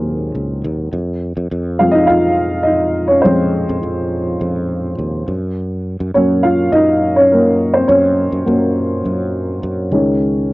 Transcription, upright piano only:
Already playing: D#3 F#3 G#3 A#3 C4 G#4 A#4 C5
1.79 F3 G#3 C4 F4 F5
1.91 D#4 D#5
2.07 F4 F5
2.63 D#4 D#5
3.08 C#4 C#5
3.22 F3 G#3 C4 C5
6.14 F#3 A#3 C#4 C#5
6.43 F4 F5
6.72 D#4 D#5
7.16 C#4 C#5
7.32 A#3 A#4
7.74 C4 C5
7.88 C#4 C#5
8.46 F#3 A#3 C#4
9.92 D#3 G#3 C#4

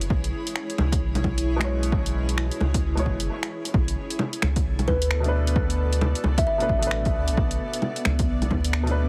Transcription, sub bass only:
0.10 B1
0.79 C#2
1.02 B1
1.24 B1
2.61 C#2
3.06 F#1
3.74 B1
4.43 C#2
4.65 B1
4.88 D2
6.24 C#2
6.69 A1
7.15 D2
7.29 B1
7.37 B1
8.06 C#2
8.29 B1
8.51 D2

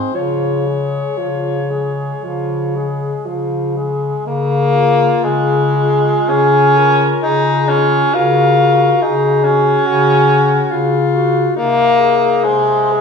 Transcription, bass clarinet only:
0.14 C#3
1.19 C#3
2.23 C#3
3.24 C#3
4.25 C#3
5.23 C#3
6.28 C#3
7.23 C#3
8.13 C#3
9.02 C#3
9.86 C#3
10.71 C#3
11.57 C3
12.44 C3

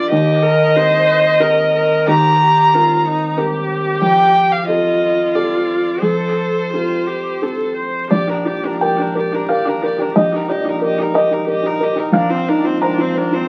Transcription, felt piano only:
Already playing: A#1 D4 F4 A#4
0.12 D#2
0.75 C4 G4 A#4
1.40 C4 G4 A#4
2.07 D#2
2.74 C4 G4 A#4
3.37 C4 G4 A#4
4.02 F2
4.67 C4 G4 A4
5.35 C4 G4 A4
6.02 F2
6.73 C4 G4 A4
7.42 C4 G4 A4
8.11 A#1 D5
8.27 G4
8.45 F4
8.65 G4
8.81 A#4 G5
8.99 G4
9.15 A#4
9.34 G4
9.49 A#4 F5
9.68 G4
9.83 A#4
9.99 G4
10.16 A#1 D#5
10.34 G4
10.49 F4 D5
10.65 G4
10.82 A#4
10.99 G4
11.14 A#4 D#5
11.31 G4
11.47 A#4
11.63 G4
11.80 A#4
11.96 G4
12.12 A#1 F5
12.30 F4
12.49 D#4
12.64 F4
12.82 C5 A#5
12.98 F4
13.15 C5
13.32 F4

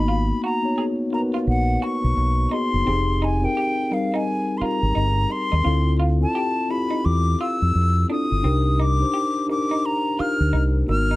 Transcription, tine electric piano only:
Already playing: A#3 B3 D#4 F#4
0.63 B3 D#4 F#4 C#5
1.11 B3 D#4 F#4 A#4
1.20 B4
2.50 B3 D#4 F#4 G#4
2.85 C4 D#4 G4 G#4
3.42 C4 D#4 G4 A#4
3.90 G3 C4 D#4 A#4
4.60 C4 D#4 G4 A#4
5.64 C4 E4 F4 A4
6.20 C4 E4 F4 A4
6.69 C4 E4 F4 G4
8.08 C4 E4 F4 A4
8.43 D4 D#4 G4 A#4
9.00 D4 D#4 G4 C5
9.47 D4 D#4 G4 A#4
10.17 D4 D#4 G4 A#4
10.87 A#3 D#4 F#4 A#4
10.93 B3

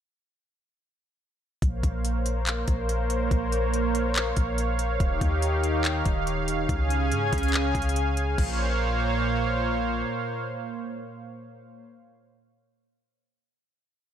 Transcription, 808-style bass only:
1.62 A#1
1.83 A#1
2.68 A#1
3.31 A#1
4.37 A#1
5.00 D#1
5.21 D#2
6.06 D#1
6.69 C#2
7.12 G#2
7.33 C#2
7.75 C#2
8.38 A#1

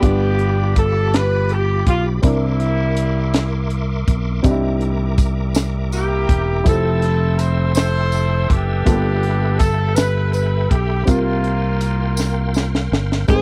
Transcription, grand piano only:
0.00 G2 B3 D4 F4 G4
2.22 C3 C4 D4 E4 A#4
4.43 C3 C4 D4 D#4 G4
4.51 E4
6.64 F3 E4 G4 A4
8.85 G2 A#3 F4 G4 A4
8.92 B3
11.05 C3 C4 F4 G4 A#4
13.28 G#2 C4 D#4 G#4 A#4
13.36 C5

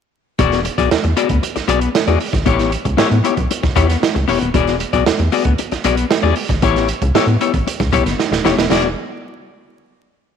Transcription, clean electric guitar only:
0.39 B3 F#4 G#4 D5
0.65 muted clean electric guitar stroke
0.78 B3 F#4 G#4 D5
0.91 muted clean electric guitar stroke
1.04 muted clean electric guitar stroke
1.17 B3 F#4 G#4 D5
1.30 muted clean electric guitar stroke
1.42 muted clean electric guitar stroke
1.56 muted clean electric guitar stroke
1.68 B3 F#4 G#4 D5
1.82 muted clean electric guitar stroke
1.94 muted clean electric guitar stroke
2.08 B3 F#4 G#4 D5
2.21 muted clean electric guitar stroke
2.33 muted clean electric guitar stroke
2.46 B3 E4 G4 C#5
2.85 muted clean electric guitar stroke
2.97 B3 E4 G4 C#5
3.11 muted clean electric guitar stroke
3.24 B3 E4 G4 C#5
3.36 muted clean electric guitar stroke
3.51 muted clean electric guitar stroke
3.63 muted clean electric guitar stroke
3.76 B3 E4 G4 C#5
3.89 muted clean electric guitar stroke
4.02 muted clean electric guitar stroke
4.15 muted clean electric guitar stroke
4.28 B3 E4 G4 C#5
4.41 muted clean electric guitar stroke
4.54 B3 F#4 G#4 D5
4.80 muted clean electric guitar stroke
4.93 B3 F#4 G#4 D5
5.06 muted clean electric guitar stroke
5.19 muted clean electric guitar stroke
5.32 B3 F#4 G#4 D5
5.45 muted clean electric guitar stroke
5.59 muted clean electric guitar stroke
5.72 muted clean electric guitar stroke
5.85 B3 F#4 G#4 D5
5.98 muted clean electric guitar stroke
6.10 muted clean electric guitar stroke
6.23 B3 F#4 G#4 D5
6.36 muted clean electric guitar stroke
6.50 muted clean electric guitar stroke
6.62 B3 E4 G4 C#5
7.02 muted clean electric guitar stroke
7.15 B3 E4 G4 C#5
7.29 muted clean electric guitar stroke
7.41 B3 E4 G4 C#5
7.54 muted clean electric guitar stroke
7.67 muted clean electric guitar stroke
7.80 muted clean electric guitar stroke
7.92 B3 E4 G4 C#5
8.06 muted clean electric guitar stroke
8.19 muted clean electric guitar stroke
8.32 muted clean electric guitar stroke
8.45 B3 E4 G4 C#5
8.57 muted clean electric guitar stroke
8.70 B3 F#4 G#4 D5

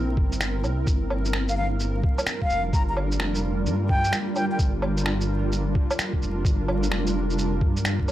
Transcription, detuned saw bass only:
Already playing: A#1
0.17 G1
0.64 C2
0.87 G1
2.50 F1
2.73 G1
3.19 F1
3.66 G2
4.59 G1
6.22 F1
6.45 G1
6.92 F1
7.61 G2
8.08 G1

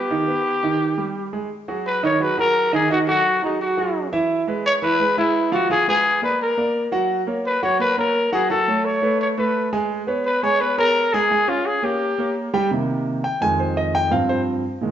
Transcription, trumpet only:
Already playing: G4
1.87 B4
2.05 C#5
2.22 B4
2.39 A#4
2.74 G#4
2.92 F#4
3.08 F#4
3.43 D#4
3.61 F#4
4.66 C#5
4.83 B4
5.18 E4
5.53 F#4
5.71 G#4
5.89 G#4
6.24 B4
6.42 A#4
7.46 B4
7.63 C#5
7.80 B4
7.98 A#4
8.33 G#4
8.50 A4
8.85 C#5
9.21 C#5
9.38 B4
10.25 B4
10.43 C#5
10.60 B4
10.78 A#4
11.13 G#4
11.49 F4
11.66 G#4
11.84 G4

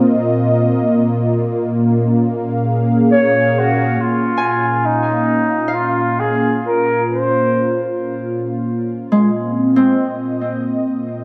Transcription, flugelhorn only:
3.12 C#5
3.59 F#4
4.01 F4
4.85 D#4
5.74 F4
6.20 G#4
6.66 A#4
7.09 C5

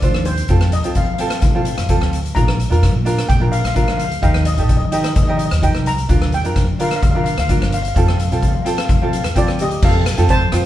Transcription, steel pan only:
Already playing: D5
0.26 C5
0.73 D#5
0.97 F5
1.06 F5
1.14 F5
1.20 F5
1.27 F5
1.34 F5
1.41 F5
1.48 F5
1.56 F5
1.62 F5
1.68 F5
1.77 F5
1.84 F5
1.92 F5
2.35 A#5
3.29 G5
3.52 F5
3.60 F5
3.67 F5
3.75 F5
3.83 F5
3.91 F5
3.98 F5
4.05 F5
4.23 F5
4.46 D#5
4.54 D#5
4.62 D#5
4.70 D#5
4.77 D#5
4.85 D#5
4.93 D#5
5.00 D#5
5.08 D#5
5.15 D#5
5.23 D#5
5.30 D#5
5.37 D#5
5.46 D#5
5.64 G5
5.87 A#5
6.34 G5
6.81 F5
6.89 F5
6.96 F5
7.03 F5
7.11 F5
7.17 F5
7.24 F5
7.39 F5
7.74 F5
7.82 F5
7.88 F5
7.95 F5
8.04 F5
8.10 F5
8.17 F5
8.25 F5
8.33 F5
8.39 F5
8.48 F5
8.55 F5
8.62 F5
8.78 F5
8.85 F5
8.94 F5
9.02 F5
9.09 F5
9.17 F5
9.37 F4 D5
9.61 G4 D#5
9.84 A4 F5
10.30 C5 A5

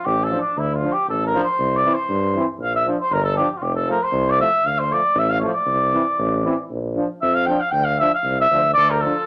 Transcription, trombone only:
0.30 F3
0.83 F3
1.34 F3
1.85 E3
2.35 E3
2.87 F3
3.38 F3
3.88 F3
4.38 F3
4.91 F3
5.42 F3
5.93 E3
6.44 E3
6.96 F3
7.48 F3
8.00 F3
8.51 F3
9.03 F3

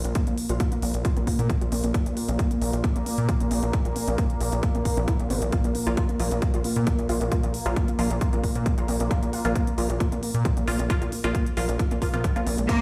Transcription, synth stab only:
5.53 F3 A#3 F4
5.87 F3 A#3 F4
6.20 F3 A#3 F4
7.09 F3 A#3 F4
7.32 F3 A#3 F4
7.66 F3 A#3 F4
7.99 F3 A#3 F4
9.11 F3 A#3 F4
9.45 F3 A#3 F4
9.78 F3 A#3 F4
10.68 F3 A#3 F4
10.90 F3 A#3 F4
11.24 F3 A#3 F4
11.57 F3 A#3 F4
12.02 F3 A#3 F4
12.14 F3 A#3 F4
12.36 F3 A#3 F4
12.69 F3 A#3 F4

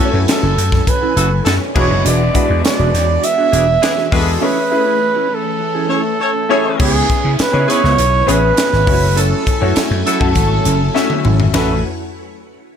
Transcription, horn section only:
1.16 E4 F#4 A4
1.45 E4 F#4 A4
1.74 B3 D4 G#4
3.53 B3 D4 G#4
3.82 B3 D4 G#4
4.12 F#4 G#4 B4
5.90 C#4 A4 C#5
6.20 C#4 A4 C#5
6.50 E4 G#4 C#5
6.80 E4 G#4 B4
7.68 E4 G#4 B4
9.16 E4 F#4 A4
10.06 E4 F#4 A4
11.54 F#3 E4 B4

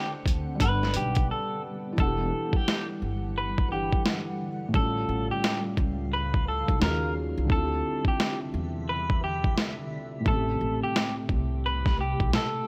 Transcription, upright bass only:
0.26 D2
0.60 G1
0.96 B1
1.98 E1
3.02 G1
4.74 A1
5.09 A1
5.78 C#2
6.69 B1
6.81 D#2
7.38 C2
7.50 D2
8.54 E2
10.26 A1
10.61 A1
11.29 C2
12.20 B1

